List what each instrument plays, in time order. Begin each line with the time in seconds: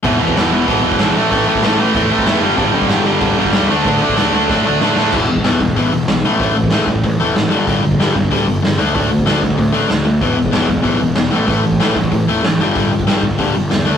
0.03 picked electric bass E1, overdriven electric guitar E2 B2 E3, kick, open hi-hat
0.19 overdriven electric guitar E2 B2 E3, picked electric bass E2
0.28 kick
0.36 picked electric bass E1, overdriven electric guitar E2 B2 E3, snare, open hi-hat
0.52 overdriven electric guitar E2 B2 E3
0.66 picked electric bass B1, overdriven electric guitar E2 B2 E3, kick, open hi-hat
0.84 picked electric bass E1, overdriven electric guitar E2 B2 E3
0.92 kick
0.99 picked electric bass B1, overdriven electric guitar E2 B2 E3, snare, open hi-hat
1.16 picked electric bass A1, overdriven electric guitar A2 E3 A3
1.31 picked electric bass A1, overdriven electric guitar A2 E3 A3, kick, open hi-hat
1.46 picked electric bass A2, overdriven electric guitar A2 E3 A3
1.55 kick
1.63 picked electric bass A1, overdriven electric guitar A2 E3 A3, snare, open hi-hat
1.78 overdriven electric guitar A2 E3 A3
1.94 picked electric bass E2, overdriven electric guitar A2 E3 A3, kick, open hi-hat
2.11 picked electric bass A1, overdriven electric guitar A2 E3 A3
2.19 kick
2.26 picked electric bass E2, overdriven electric guitar A2 E3 A3, snare, open hi-hat
2.41 picked electric bass G1, overdriven electric guitar G2 D3 G3
2.57 picked electric bass G1, overdriven electric guitar G2 D3 G3, kick, open hi-hat
2.74 picked electric bass G2, overdriven electric guitar G2 D3 G3
2.82 kick
2.89 picked electric bass G1, overdriven electric guitar G2 D3 G3, snare, open hi-hat
3.05 overdriven electric guitar G2 D3 G3
3.21 picked electric bass D2, overdriven electric guitar G2 D3 G3, kick, open hi-hat
3.38 picked electric bass G1, overdriven electric guitar G2 D3 G3
3.45 kick
3.52 picked electric bass D2, overdriven electric guitar G2 D3 G3, snare, open hi-hat
3.70 picked electric bass D2, overdriven electric guitar D3 A3 D4
3.85 picked electric bass D2, overdriven electric guitar D3 A3 D4, kick, open hi-hat
4.01 overdriven electric guitar D3 A3 D4, picked electric bass D3
4.09 kick
4.16 picked electric bass D2, overdriven electric guitar D3 A3 D4, snare, open hi-hat
4.33 overdriven electric guitar D3 A3 D4
4.49 picked electric bass A2, overdriven electric guitar D3 A3 D4, kick, snare
4.65 picked electric bass D2, overdriven electric guitar D3 A3 D4
4.80 picked electric bass A2, overdriven electric guitar D3 A3 D4, snare
4.96 picked electric bass A2, overdriven electric guitar D3 A3 D4, snare
5.12 picked electric bass E1, overdriven electric guitar E2 B2 E3, kick, crash
5.29 overdriven electric guitar E2 B2, open hi-hat
5.37 kick
5.44 picked electric bass E1, overdriven electric guitar E2 B2 E3, snare, open hi-hat
5.60 picked electric bass E1, overdriven electric guitar E2 B2, kick, open hi-hat
5.68 kick
5.76 picked electric bass B1, overdriven electric guitar E2 B2 E3, kick, open hi-hat
5.92 picked electric bass E1, overdriven electric guitar E2 B2, open hi-hat
6.07 picked electric bass B1, overdriven electric guitar E2 B2, snare, open hi-hat
6.23 picked electric bass A1, overdriven electric guitar A2 E3 A3, open hi-hat
6.40 picked electric bass A1, overdriven electric guitar A2 E3 A3, kick, open hi-hat
6.55 picked electric bass A1, overdriven electric guitar A2 E3, open hi-hat
6.63 kick
6.71 picked electric bass A1, overdriven electric guitar A2 E3 A3, snare, open hi-hat
6.87 picked electric bass A1, overdriven electric guitar A2 E3, kick, open hi-hat
6.95 kick
7.04 picked electric bass A1, overdriven electric guitar A2 E3, kick, open hi-hat
7.20 picked electric bass E1, overdriven electric guitar A2 E3 A3, open hi-hat
7.34 picked electric bass G#1, overdriven electric guitar A2 E3, snare, open hi-hat
7.49 overdriven electric guitar G2 D3 G3, open hi-hat
7.54 picked electric bass G1
7.67 picked electric bass G1, overdriven electric guitar G2 D3 G3, kick, open hi-hat
7.84 overdriven electric guitar G2 D3, open hi-hat
7.91 kick
7.99 picked electric bass G1, overdriven electric guitar G2 D3 G3, snare, open hi-hat
8.15 picked electric bass G1, overdriven electric guitar G2 D3, kick, open hi-hat
8.23 kick
8.31 picked electric bass D2, overdriven electric guitar G2 D3 G3, kick, open hi-hat
8.47 picked electric bass G1, overdriven electric guitar G2 D3, open hi-hat
8.62 picked electric bass G1, overdriven electric guitar G2 D3, snare, open hi-hat
8.78 picked electric bass D2, overdriven electric guitar D3 A3 D4, open hi-hat
8.94 picked electric bass D2, overdriven electric guitar D3 A3 D4, kick, open hi-hat
9.09 picked electric bass D2, overdriven electric guitar D3 A3, open hi-hat
9.19 kick
9.26 picked electric bass D2, overdriven electric guitar D3 A3 D4, snare, open hi-hat
9.42 picked electric bass D2, overdriven electric guitar D3 A3, kick, open hi-hat
9.51 kick
9.58 picked electric bass D2, overdriven electric guitar D3 A3, kick, open hi-hat
9.73 picked electric bass A1, overdriven electric guitar D3 A3 D4, open hi-hat
9.88 picked electric bass D2, overdriven electric guitar D3 A3, snare, open hi-hat
10.05 picked electric bass D2, overdriven electric guitar D3 A3, open hi-hat
10.21 picked electric bass E1, overdriven electric guitar E2 B2 E3, kick, open hi-hat
10.37 overdriven electric guitar E2 B2, open hi-hat
10.45 kick
10.51 picked electric bass E1, overdriven electric guitar E2 B2 E3, snare, open hi-hat
10.68 picked electric bass E1, overdriven electric guitar E2 B2, kick, open hi-hat
10.77 kick
10.82 picked electric bass B1, overdriven electric guitar E2 B2 E3, kick, open hi-hat
11.00 picked electric bass E1, overdriven electric guitar E2 B2, open hi-hat
11.16 picked electric bass E1, overdriven electric guitar E2 B2, snare, open hi-hat
11.31 picked electric bass A1, overdriven electric guitar A2 E3 A3, open hi-hat
11.46 picked electric bass A1, overdriven electric guitar A2 E3 A3, kick, open hi-hat
11.63 picked electric bass A1, overdriven electric guitar A2 E3, open hi-hat
11.72 kick
11.80 picked electric bass A1, overdriven electric guitar A2 E3 A3, snare, open hi-hat
11.95 picked electric bass A1, overdriven electric guitar A2 E3, kick, open hi-hat
12.04 kick
12.12 picked electric bass A1, overdriven electric guitar A2 E3, kick, open hi-hat
12.27 picked electric bass E1, overdriven electric guitar A2 E3 A3, open hi-hat
12.43 picked electric bass A1, overdriven electric guitar A2 E3, snare, open hi-hat
12.59 picked electric bass G1, overdriven electric guitar G2 D3 G3, open hi-hat
12.75 picked electric bass G1, overdriven electric guitar G2 D3 G3, kick, open hi-hat
12.92 overdriven electric guitar G2 D3, open hi-hat
12.99 kick
13.07 picked electric bass G1, overdriven electric guitar G2 D3 G3, snare, open hi-hat
13.22 picked electric bass G1, overdriven electric guitar G2 D3, kick, open hi-hat
13.31 kick
13.38 picked electric bass D2, overdriven electric guitar G2 D3 G3, kick, open hi-hat
13.54 picked electric bass G1, overdriven electric guitar G2 D3, open hi-hat
13.70 picked electric bass E2, overdriven electric guitar G2 D3, snare, open hi-hat
13.85 picked electric bass D2, overdriven electric guitar D3 A3 D4, open hi-hat